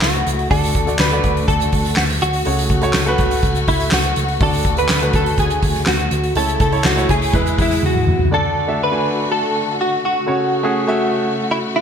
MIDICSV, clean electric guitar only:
0, 0, Header, 1, 2, 480
1, 0, Start_track
1, 0, Tempo, 488202
1, 499, Time_signature, 4, 2, 24, 8
1, 11615, End_track
2, 0, Start_track
2, 0, Title_t, "Clean electric guitar"
2, 0, Program_c, 0, 27
2, 23, Note_on_c, 0, 66, 76
2, 467, Note_off_c, 0, 66, 0
2, 500, Note_on_c, 0, 69, 102
2, 945, Note_off_c, 0, 69, 0
2, 983, Note_on_c, 0, 71, 87
2, 1450, Note_off_c, 0, 71, 0
2, 1454, Note_on_c, 0, 69, 89
2, 1933, Note_off_c, 0, 69, 0
2, 1937, Note_on_c, 0, 66, 85
2, 2002, Note_off_c, 0, 66, 0
2, 2183, Note_on_c, 0, 66, 83
2, 3578, Note_off_c, 0, 66, 0
2, 3622, Note_on_c, 0, 64, 81
2, 3863, Note_off_c, 0, 64, 0
2, 3867, Note_on_c, 0, 66, 74
2, 4349, Note_off_c, 0, 66, 0
2, 4353, Note_on_c, 0, 69, 95
2, 4701, Note_off_c, 0, 69, 0
2, 4705, Note_on_c, 0, 71, 92
2, 5034, Note_off_c, 0, 71, 0
2, 5068, Note_on_c, 0, 69, 89
2, 5284, Note_off_c, 0, 69, 0
2, 5303, Note_on_c, 0, 68, 81
2, 5780, Note_on_c, 0, 66, 79
2, 5792, Note_off_c, 0, 68, 0
2, 6223, Note_off_c, 0, 66, 0
2, 6261, Note_on_c, 0, 69, 96
2, 6481, Note_off_c, 0, 69, 0
2, 6501, Note_on_c, 0, 69, 77
2, 6742, Note_on_c, 0, 66, 71
2, 6744, Note_off_c, 0, 69, 0
2, 6985, Note_off_c, 0, 66, 0
2, 6985, Note_on_c, 0, 68, 86
2, 7490, Note_on_c, 0, 64, 85
2, 7718, Note_off_c, 0, 64, 0
2, 7727, Note_on_c, 0, 66, 85
2, 7900, Note_off_c, 0, 68, 0
2, 8158, Note_off_c, 0, 66, 0
2, 8199, Note_on_c, 0, 69, 115
2, 8681, Note_off_c, 0, 69, 0
2, 8686, Note_on_c, 0, 71, 93
2, 9118, Note_off_c, 0, 71, 0
2, 9159, Note_on_c, 0, 69, 97
2, 9595, Note_off_c, 0, 69, 0
2, 9644, Note_on_c, 0, 66, 93
2, 9871, Note_off_c, 0, 66, 0
2, 9883, Note_on_c, 0, 66, 90
2, 11272, Note_off_c, 0, 66, 0
2, 11320, Note_on_c, 0, 64, 83
2, 11382, Note_off_c, 0, 64, 0
2, 11562, Note_on_c, 0, 66, 91
2, 11615, Note_off_c, 0, 66, 0
2, 11615, End_track
0, 0, End_of_file